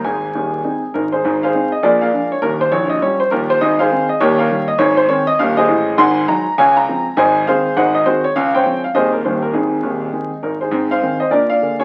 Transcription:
X:1
M:4/4
L:1/8
Q:"Swing" 1/4=202
K:Ab
V:1 name="Grand piano"
[Aa]6 [EB] [EAc]- | [EAc] [Acf]2 e [AB=d] [Bdf]2 _d | B c d e d c [FGB] c | e [Acf]2 e [GBd] [Bdf]2 e |
d c d e f [Ace]3 | [_gac']2 b2 [dfa] b3 | [cea]2 [Acf]2 [ce_g] e [_GAc] d | f [cdg]2 f [Ace] B c B |
[CEA]6 [EB] [Ac]- | [Ac] [cf]2 [ce] [B=d] [df]2 [A_d] |]
V:2 name="Grand piano" clef=bass
[A,,,A,,]2 [E,,,E,,]2 [A,CE]2 [A,,,A,,]2 | [A,,,A,,]2 [A,CE]2 [B,,,B,,]2 [F,A,=D]2 | [E,,,E,,]2 [B,,,,B,,,]2 [F,G,D]2 [E,,,E,,]2 | [A,,,A,,]2 [E,A,C]2 [E,,,E,,]2 [E,G,B,]2 |
[A,,,A,,]2 [E,A,C]2 [E,,,E,,]2 [=A,,,=A,,]2 | [A,,,A,,]2 [_G,A,E]2 [D,,D,]2 [F,A,C]2 | [A,,,A,,]2 [E,A,C]2 [A,,,A,,]2 [E,A,C]2 | [D,,D,]2 [F,A,C]2 [E,,,E,,E,A,C]2 [E,,,E,,E,G,B,]2 |
[A,,,A,,]2 [E,,,E,,]2 [E,A,C]2 [A,,,A,,]2 | [A,,C]2 [E,A,C]2 [B,,=D]2 [=D,A,B,]2 |]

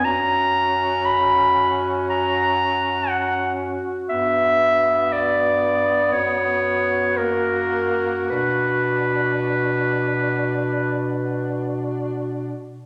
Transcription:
X:1
M:4/4
L:1/8
Q:1/4=58
K:Bm
V:1 name="Clarinet"
^a2 b z a2 f z | e2 d2 c2 ^A2 | B6 z2 |]
V:2 name="Alto saxophone"
F8- | F3 z F4- | F6- F z |]
V:3 name="Tenor saxophone"
C6- C z | B,6 ^A,2 | D6- D z |]
V:4 name="Bass clarinet" clef=bass
F,,6- F,, z | G,,4 F,,4 | B,,6- B,, z |]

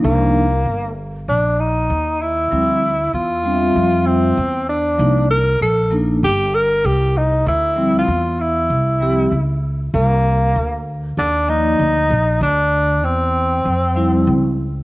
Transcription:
X:1
M:4/4
L:1/16
Q:"Swing 16ths" 1/4=97
K:Dphr
V:1 name="Tenor saxophone"
B,6 z2 D2 E4 =E2- | =E4 F6 C4 D2- | D2 B2 A2 z2 G2 B2 G2 E2 | =E3 F3 E8 z2 |
B,6 z2 D2 E6 | D4 C8- C2 z2 |]
V:2 name="Vibraphone"
[F,B,DE]2 z12 z2 | [F,G,C=E]2 z4 [G,CDF=e]6 z4 | [F,B,DE]2 z4 [F,B,DE]2 z8 | z2 [F,G,C=E]2 z6 [F,G,CG]2 z4 |
z8 z2 [F,B,Ed]2 z4 | z8 z2 [F,G,C=E]2 z4 |]
V:3 name="Upright bass" clef=bass
C,,4 G,,,4 B,,,4 E,,4 | D,,4 =E,,4 F,,4 E,,4 | C,,4 B,,,4 G,,,4 C,,4 | D,,4 =E,,4 C,,4 _D,,4 |
C,,4 D,,4 E,,4 D,,2 B,,,2 | D,,4 =E,,4 F,,4 _D,,4 |]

